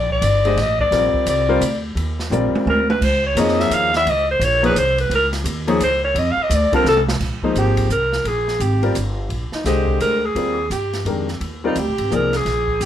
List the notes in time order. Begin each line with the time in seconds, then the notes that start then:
Already playing: A#1 D5
0.10 D5, kick
0.21 G1, hi-hat pedal, ride
0.45 G#3 D4 G4 C5 D#5, ride
0.56 A1, snare, ride
0.60 D#5
0.79 D5, kick
0.91 A#1 G3 C4 F4 A#4 D5, snare, ride
1.14 muted upright bass stroke, kick
1.26 C2 D5, hi-hat pedal, ride
1.49 G3 C4 F4 A#4 C5
1.60 D2, hi-hat pedal, ride
1.95 D#2, ride
2.19 snare
2.30 A#1 G3 C4 F4 A#4 D5, hi-hat pedal, high tom
2.53 muted upright bass stroke, high tom
2.66 D2 A#4, high tom
2.90 B4, high tom
3.01 C#2 C5, kick, crash
3.26 C#5
3.35 F2 F3 A#3 D#4 G#4 C#5, hi-hat pedal, ride
3.40 D#5
3.48 snare
3.60 E5, snare
3.70 D#2, hi-hat pedal, ride
3.74 F5
3.94 E5, snare, ride
4.05 C#2, ride
4.10 D#5
4.31 C5
4.40 A#1, hi-hat pedal, ride
4.44 C#5
4.62 F3 A#3 D#4 G#4 B4 C#5, ride
4.75 C2 C5, hi-hat pedal, ride
4.98 B4, ride
5.10 C#2, ride
5.15 A#4
5.33 snare, ride
5.44 D#2, hi-hat pedal, ride
5.67 F3 A#3 D#4 G#4 C#5, ride
5.80 C#2 C5, hi-hat pedal, ride
6.04 C#5
6.15 F2 D#5, ride
6.31 F5
6.37 muted upright bass stroke
6.42 D#5
6.50 D2, hi-hat pedal, ride
6.55 D5
6.72 D3 G3 C4 F4 A4 A#4, muted upright bass stroke, kick, ride
6.84 C2 A4, snare
6.97 high tom
7.08 snare
7.20 A#1, kick, snare, crash
7.42 F3 G#3 A#3 D#4 C5, muted upright bass stroke, kick
7.54 G#1 G4, hi-hat pedal, ride
7.77 kick, ride
7.89 C2 A#4, hi-hat pedal
8.13 snare
8.24 A#1 G#4, ride
8.48 snare
8.60 G#1 G4, hi-hat pedal, ride
8.82 G3 C4 F4 A#4 D5, ride
8.95 G1, hi-hat pedal, ride
9.29 A#1, ride
9.52 D#4, muted upright bass stroke, snare
9.64 C2 D3 G#3 G4 C5 D#5, snare, hi-hat pedal, ride
9.88 kick
10.00 D2 A#4, hi-hat pedal, ride
10.25 G#4
10.35 D#2 G3 C4 F4 A#4 D5, ride
10.70 G2 G4, hi-hat pedal, ride
10.93 snare, ride
11.05 F2 D#3 G#3 D4 G4 A#4, ride
11.28 snare
11.40 D#2, ride
11.64 G3 C4 D#4 F4 A#4 D5
11.76 D2 G4, hi-hat pedal, ride
11.87 A#1
11.98 G#1, ride
12.11 C2 F3 A#3 D#4 G#4 A#4 D5, hi-hat pedal
12.33 G#4, snare, ride
12.45 A#1, snare, ride
12.68 kick
12.80 G1, hi-hat pedal, ride